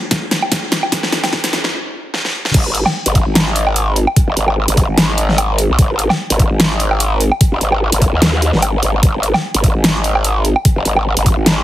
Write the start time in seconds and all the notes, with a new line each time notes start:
0.11 kick, snare, closed hi-hat
0.31 snare, closed hi-hat
0.42 low woodblock
0.52 kick, snare, closed hi-hat
0.72 snare, closed hi-hat
0.83 low woodblock
0.92 kick, snare, closed hi-hat
1.03 snare
1.12 snare, closed hi-hat
1.24 snare, closed hi-hat, low woodblock
1.33 kick, snare
1.44 snare, closed hi-hat
1.53 snare, closed hi-hat
1.64 snare
2.14 snare
2.25 snare
2.45 snare
2.54 G#1, kick, closed hi-hat, crash
2.75 closed hi-hat
2.86 snare, low woodblock
3.06 G#1, closed hi-hat
3.15 kick, closed hi-hat
3.26 G#1
3.35 snare, closed hi-hat
3.56 closed hi-hat
3.67 low woodblock
3.76 closed hi-hat
3.96 closed hi-hat
4.07 low woodblock
4.16 kick, closed hi-hat
4.28 F#1
4.37 G#1, closed hi-hat
4.48 low woodblock
4.68 G#1, closed hi-hat
4.77 kick, closed hi-hat
4.88 G#1
4.98 snare, closed hi-hat
5.18 closed hi-hat
5.29 snare
5.38 closed hi-hat, low woodblock
5.58 closed hi-hat
5.69 B1
5.79 G#1, kick, closed hi-hat
5.99 closed hi-hat
6.10 snare, low woodblock
6.30 G#1, closed hi-hat
6.39 kick, closed hi-hat
6.51 G#1
6.60 snare, closed hi-hat
6.80 closed hi-hat
6.91 low woodblock
7.00 closed hi-hat
7.20 closed hi-hat
7.32 low woodblock
7.41 kick, closed hi-hat
7.52 F#1
7.61 G#1, closed hi-hat
7.72 low woodblock
7.92 G#1, closed hi-hat
8.02 kick, closed hi-hat
8.13 D#2
8.22 snare, closed hi-hat
8.42 closed hi-hat
8.53 G#1, snare
8.62 closed hi-hat, low woodblock
8.83 G#1, closed hi-hat
9.03 G#1, kick, closed hi-hat
9.23 closed hi-hat
9.34 snare, low woodblock
9.54 G#1, closed hi-hat
9.64 kick, closed hi-hat
9.75 G#1
9.84 snare, closed hi-hat
10.04 closed hi-hat
10.15 low woodblock
10.24 closed hi-hat
10.45 closed hi-hat
10.56 low woodblock
10.65 kick, closed hi-hat
10.76 F#1
10.85 G#1, closed hi-hat
10.97 low woodblock
11.17 G#1, closed hi-hat
11.26 kick, closed hi-hat
11.37 G#1
11.46 snare, closed hi-hat